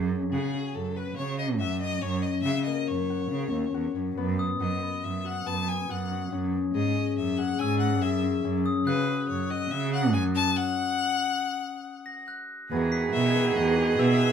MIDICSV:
0, 0, Header, 1, 7, 480
1, 0, Start_track
1, 0, Tempo, 426743
1, 2282, Time_signature, 5, 2, 24, 8
1, 16110, End_track
2, 0, Start_track
2, 0, Title_t, "Glockenspiel"
2, 0, Program_c, 0, 9
2, 4941, Note_on_c, 0, 87, 55
2, 6116, Note_off_c, 0, 87, 0
2, 8559, Note_on_c, 0, 88, 58
2, 9699, Note_off_c, 0, 88, 0
2, 9736, Note_on_c, 0, 87, 53
2, 9977, Note_on_c, 0, 90, 66
2, 10898, Note_off_c, 0, 87, 0
2, 11137, Note_off_c, 0, 90, 0
2, 13563, Note_on_c, 0, 94, 51
2, 13811, Note_on_c, 0, 90, 48
2, 14491, Note_off_c, 0, 94, 0
2, 14493, Note_off_c, 0, 90, 0
2, 14531, Note_on_c, 0, 95, 58
2, 15706, Note_off_c, 0, 95, 0
2, 15738, Note_on_c, 0, 88, 55
2, 16110, Note_off_c, 0, 88, 0
2, 16110, End_track
3, 0, Start_track
3, 0, Title_t, "Violin"
3, 0, Program_c, 1, 40
3, 368, Note_on_c, 1, 68, 76
3, 841, Note_on_c, 1, 69, 65
3, 858, Note_off_c, 1, 68, 0
3, 1084, Note_on_c, 1, 71, 73
3, 1101, Note_off_c, 1, 69, 0
3, 1303, Note_off_c, 1, 71, 0
3, 1310, Note_on_c, 1, 73, 80
3, 1540, Note_off_c, 1, 73, 0
3, 1557, Note_on_c, 1, 75, 81
3, 1666, Note_off_c, 1, 75, 0
3, 1793, Note_on_c, 1, 76, 81
3, 2021, Note_off_c, 1, 76, 0
3, 2033, Note_on_c, 1, 75, 89
3, 2268, Note_on_c, 1, 73, 85
3, 2285, Note_off_c, 1, 75, 0
3, 2502, Note_on_c, 1, 75, 76
3, 2519, Note_off_c, 1, 73, 0
3, 2721, Note_off_c, 1, 75, 0
3, 2728, Note_on_c, 1, 76, 88
3, 2966, Note_off_c, 1, 76, 0
3, 2977, Note_on_c, 1, 75, 72
3, 3233, Note_on_c, 1, 73, 68
3, 3250, Note_off_c, 1, 75, 0
3, 4448, Note_off_c, 1, 73, 0
3, 5185, Note_on_c, 1, 75, 67
3, 5671, Note_on_c, 1, 76, 64
3, 5688, Note_off_c, 1, 75, 0
3, 5906, Note_on_c, 1, 78, 81
3, 5923, Note_off_c, 1, 76, 0
3, 6152, Note_on_c, 1, 81, 93
3, 6169, Note_off_c, 1, 78, 0
3, 6394, Note_on_c, 1, 80, 80
3, 6411, Note_off_c, 1, 81, 0
3, 6632, Note_on_c, 1, 78, 72
3, 6649, Note_off_c, 1, 80, 0
3, 7112, Note_off_c, 1, 78, 0
3, 7599, Note_on_c, 1, 75, 78
3, 8040, Note_off_c, 1, 75, 0
3, 8074, Note_on_c, 1, 76, 71
3, 8299, Note_on_c, 1, 78, 86
3, 8316, Note_off_c, 1, 76, 0
3, 8530, Note_on_c, 1, 80, 94
3, 8547, Note_off_c, 1, 78, 0
3, 8759, Note_off_c, 1, 80, 0
3, 8765, Note_on_c, 1, 78, 74
3, 9016, Note_on_c, 1, 76, 71
3, 9033, Note_off_c, 1, 78, 0
3, 9496, Note_off_c, 1, 76, 0
3, 9964, Note_on_c, 1, 71, 83
3, 10413, Note_off_c, 1, 71, 0
3, 10444, Note_on_c, 1, 73, 74
3, 10687, Note_on_c, 1, 75, 87
3, 10704, Note_off_c, 1, 73, 0
3, 10923, Note_on_c, 1, 76, 92
3, 10940, Note_off_c, 1, 75, 0
3, 11164, Note_off_c, 1, 76, 0
3, 11175, Note_on_c, 1, 78, 83
3, 11392, Note_off_c, 1, 78, 0
3, 11400, Note_on_c, 1, 80, 89
3, 11508, Note_off_c, 1, 80, 0
3, 11643, Note_on_c, 1, 81, 110
3, 11883, Note_on_c, 1, 78, 112
3, 11900, Note_off_c, 1, 81, 0
3, 13806, Note_off_c, 1, 78, 0
3, 14770, Note_on_c, 1, 76, 90
3, 15255, Note_on_c, 1, 75, 79
3, 15272, Note_off_c, 1, 76, 0
3, 15743, Note_on_c, 1, 76, 97
3, 15759, Note_off_c, 1, 75, 0
3, 16110, Note_off_c, 1, 76, 0
3, 16110, End_track
4, 0, Start_track
4, 0, Title_t, "Viola"
4, 0, Program_c, 2, 41
4, 14297, Note_on_c, 2, 68, 92
4, 16110, Note_off_c, 2, 68, 0
4, 16110, End_track
5, 0, Start_track
5, 0, Title_t, "Harp"
5, 0, Program_c, 3, 46
5, 0, Note_on_c, 3, 61, 76
5, 0, Note_on_c, 3, 68, 69
5, 375, Note_on_c, 3, 66, 71
5, 608, Note_off_c, 3, 61, 0
5, 613, Note_on_c, 3, 61, 66
5, 1076, Note_off_c, 3, 66, 0
5, 1081, Note_on_c, 3, 66, 62
5, 1321, Note_off_c, 3, 61, 0
5, 1325, Note_on_c, 3, 61, 74
5, 1801, Note_off_c, 3, 66, 0
5, 1806, Note_on_c, 3, 66, 68
5, 1979, Note_off_c, 3, 68, 0
5, 2038, Note_off_c, 3, 61, 0
5, 2043, Note_on_c, 3, 61, 56
5, 2273, Note_off_c, 3, 61, 0
5, 2277, Note_on_c, 3, 61, 78
5, 2753, Note_off_c, 3, 66, 0
5, 2757, Note_on_c, 3, 66, 62
5, 3002, Note_on_c, 3, 58, 65
5, 3479, Note_off_c, 3, 66, 0
5, 3484, Note_on_c, 3, 66, 62
5, 3717, Note_off_c, 3, 61, 0
5, 3721, Note_on_c, 3, 61, 67
5, 4204, Note_off_c, 3, 66, 0
5, 4209, Note_on_c, 3, 66, 69
5, 4448, Note_off_c, 3, 61, 0
5, 4453, Note_on_c, 3, 61, 60
5, 4694, Note_on_c, 3, 59, 76
5, 4761, Note_off_c, 3, 58, 0
5, 5173, Note_off_c, 3, 66, 0
5, 5177, Note_on_c, 3, 66, 66
5, 5419, Note_off_c, 3, 59, 0
5, 5424, Note_on_c, 3, 59, 62
5, 5899, Note_off_c, 3, 66, 0
5, 5904, Note_on_c, 3, 66, 61
5, 6142, Note_off_c, 3, 59, 0
5, 6146, Note_on_c, 3, 59, 68
5, 6621, Note_off_c, 3, 66, 0
5, 6626, Note_on_c, 3, 66, 65
5, 6863, Note_off_c, 3, 61, 0
5, 6868, Note_on_c, 3, 61, 57
5, 7107, Note_off_c, 3, 61, 0
5, 7111, Note_on_c, 3, 61, 80
5, 7590, Note_on_c, 3, 68, 74
5, 7819, Note_off_c, 3, 61, 0
5, 7824, Note_on_c, 3, 61, 66
5, 8299, Note_off_c, 3, 68, 0
5, 8303, Note_on_c, 3, 68, 67
5, 8538, Note_off_c, 3, 61, 0
5, 8542, Note_on_c, 3, 61, 78
5, 9015, Note_off_c, 3, 68, 0
5, 9020, Note_on_c, 3, 68, 78
5, 9256, Note_off_c, 3, 61, 0
5, 9261, Note_on_c, 3, 61, 63
5, 9367, Note_off_c, 3, 66, 0
5, 9494, Note_off_c, 3, 61, 0
5, 9499, Note_on_c, 3, 61, 80
5, 9640, Note_off_c, 3, 59, 0
5, 9974, Note_on_c, 3, 66, 73
5, 10211, Note_off_c, 3, 61, 0
5, 10215, Note_on_c, 3, 61, 69
5, 10686, Note_off_c, 3, 66, 0
5, 10691, Note_on_c, 3, 66, 64
5, 10928, Note_off_c, 3, 61, 0
5, 10932, Note_on_c, 3, 61, 75
5, 11402, Note_off_c, 3, 66, 0
5, 11407, Note_on_c, 3, 66, 79
5, 11577, Note_off_c, 3, 68, 0
5, 11646, Note_off_c, 3, 61, 0
5, 11651, Note_on_c, 3, 61, 68
5, 14148, Note_off_c, 3, 66, 0
5, 14298, Note_on_c, 3, 59, 83
5, 14777, Note_on_c, 3, 66, 73
5, 14910, Note_off_c, 3, 61, 0
5, 15015, Note_off_c, 3, 59, 0
5, 15020, Note_on_c, 3, 59, 76
5, 15495, Note_off_c, 3, 66, 0
5, 15500, Note_on_c, 3, 66, 70
5, 15731, Note_off_c, 3, 59, 0
5, 15735, Note_on_c, 3, 59, 86
5, 16110, Note_off_c, 3, 59, 0
5, 16110, Note_off_c, 3, 66, 0
5, 16110, End_track
6, 0, Start_track
6, 0, Title_t, "Harmonium"
6, 0, Program_c, 4, 20
6, 14306, Note_on_c, 4, 51, 63
6, 14307, Note_on_c, 4, 80, 76
6, 14310, Note_on_c, 4, 66, 61
6, 14311, Note_on_c, 4, 52, 71
6, 16110, Note_off_c, 4, 51, 0
6, 16110, Note_off_c, 4, 52, 0
6, 16110, Note_off_c, 4, 66, 0
6, 16110, Note_off_c, 4, 80, 0
6, 16110, End_track
7, 0, Start_track
7, 0, Title_t, "Cello"
7, 0, Program_c, 5, 42
7, 0, Note_on_c, 5, 42, 98
7, 251, Note_off_c, 5, 42, 0
7, 372, Note_on_c, 5, 49, 76
7, 551, Note_off_c, 5, 49, 0
7, 839, Note_on_c, 5, 42, 69
7, 1202, Note_off_c, 5, 42, 0
7, 1321, Note_on_c, 5, 49, 76
7, 1802, Note_on_c, 5, 42, 80
7, 1818, Note_off_c, 5, 49, 0
7, 2163, Note_off_c, 5, 42, 0
7, 2280, Note_on_c, 5, 42, 96
7, 2641, Note_off_c, 5, 42, 0
7, 2758, Note_on_c, 5, 49, 77
7, 2939, Note_off_c, 5, 49, 0
7, 3239, Note_on_c, 5, 42, 67
7, 3602, Note_off_c, 5, 42, 0
7, 3727, Note_on_c, 5, 49, 78
7, 3958, Note_off_c, 5, 49, 0
7, 3965, Note_on_c, 5, 39, 70
7, 4183, Note_off_c, 5, 39, 0
7, 4207, Note_on_c, 5, 40, 69
7, 4426, Note_off_c, 5, 40, 0
7, 4446, Note_on_c, 5, 42, 64
7, 4667, Note_off_c, 5, 42, 0
7, 4686, Note_on_c, 5, 42, 89
7, 5054, Note_off_c, 5, 42, 0
7, 5171, Note_on_c, 5, 42, 77
7, 5356, Note_off_c, 5, 42, 0
7, 5655, Note_on_c, 5, 42, 67
7, 6021, Note_off_c, 5, 42, 0
7, 6142, Note_on_c, 5, 42, 80
7, 6507, Note_off_c, 5, 42, 0
7, 6625, Note_on_c, 5, 42, 71
7, 6989, Note_off_c, 5, 42, 0
7, 7107, Note_on_c, 5, 42, 84
7, 7470, Note_off_c, 5, 42, 0
7, 7589, Note_on_c, 5, 44, 74
7, 7770, Note_off_c, 5, 44, 0
7, 8067, Note_on_c, 5, 42, 70
7, 8428, Note_off_c, 5, 42, 0
7, 8541, Note_on_c, 5, 44, 85
7, 9018, Note_on_c, 5, 42, 84
7, 9035, Note_off_c, 5, 44, 0
7, 9378, Note_off_c, 5, 42, 0
7, 9493, Note_on_c, 5, 42, 94
7, 9854, Note_off_c, 5, 42, 0
7, 9970, Note_on_c, 5, 49, 83
7, 10152, Note_off_c, 5, 49, 0
7, 10448, Note_on_c, 5, 42, 68
7, 10809, Note_off_c, 5, 42, 0
7, 10927, Note_on_c, 5, 49, 87
7, 11403, Note_on_c, 5, 42, 85
7, 11420, Note_off_c, 5, 49, 0
7, 11762, Note_off_c, 5, 42, 0
7, 14292, Note_on_c, 5, 40, 88
7, 14657, Note_off_c, 5, 40, 0
7, 14778, Note_on_c, 5, 47, 81
7, 15140, Note_off_c, 5, 47, 0
7, 15256, Note_on_c, 5, 40, 85
7, 15618, Note_off_c, 5, 40, 0
7, 15734, Note_on_c, 5, 47, 99
7, 15916, Note_off_c, 5, 47, 0
7, 16110, End_track
0, 0, End_of_file